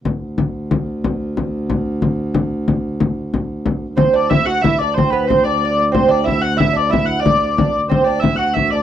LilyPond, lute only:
\new Staff \with { instrumentName = "Lute" } { \time 6/8 \key d \mixolydian \tempo 4. = 122 r2. | r2. | r2. | r2. |
c'8 d'8 e'8 fis'8 e'8 d'8 | c'8 b8 c'8 d'8~ d'32 d'8 r16. | c'8 d'8 e'8 fis'8 e'8 d'8 | e'4 d'8 d'8~ d'32 d'8 r16. |
c'8 d'8 e'8 fis'4 d'8 | }